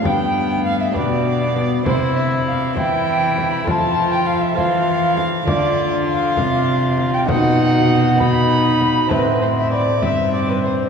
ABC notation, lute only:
X:1
M:6/8
L:1/8
Q:3/8=66
K:Gmix
V:1 name="Lute"
[DGB]3 [DGB]3 | [E,Cc]3 [CEc]3 | [A,Fc]3 [A,cf]3 | [A,Fd]6 |
[B,^D^d]3 [B,Dd]3 | [CEA]6 |]
V:2 name="Lute" clef=bass
G,,3 B,,3 | C,3 E,3 | F,3 E,3 | D,3 C,3 |
B,,6 | A,,3 G,,3 |]